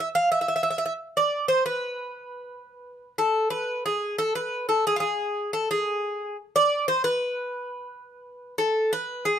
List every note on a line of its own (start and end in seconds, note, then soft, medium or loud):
0.00 0.08 E5 medium
0.15 0.31 F5 medium
0.32 0.39 E5 medium
0.41 0.47 E5 medium
0.48 0.55 E5 medium
0.56 0.62 E5 medium
0.63 0.69 E5 medium
0.71 0.77 E5 medium
0.78 0.84 E5 medium
0.86 0.92 E5 medium
1.17 1.48 D5 medium
1.48 1.65 C5 medium
1.66 3.15 B4 medium
3.18 3.50 A4 medium
3.50 3.83 B4 medium
3.86 4.18 G#4 medium
4.18 4.35 A4 medium
4.35 4.68 B4 medium
4.69 4.86 A4 medium
4.87 4.95 G#4 medium
4.96 5.03 F4 medium
4.96 5.53 G#4 medium
5.53 5.70 A4 medium
5.71 6.36 G#4 medium
6.56 6.88 D5 medium
6.88 7.04 C5 medium
7.04 8.54 B4 medium
8.58 8.91 A4 medium
8.93 9.25 B4 medium
9.25 9.39 G#4 medium